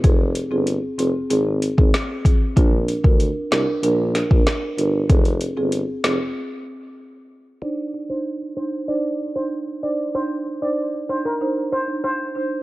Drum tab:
HH |x-x-x-x-x-x-x-x-|x-x-x-x-x-x-x-x-|xxx-x-x---------|----------------|
SD |------------o---|------o---o-o---|------o---------|----------------|
BD |o----------o--o-|o--o-------o----|o---------------|----------------|

HH |----------------|
SD |----------------|
BD |----------------|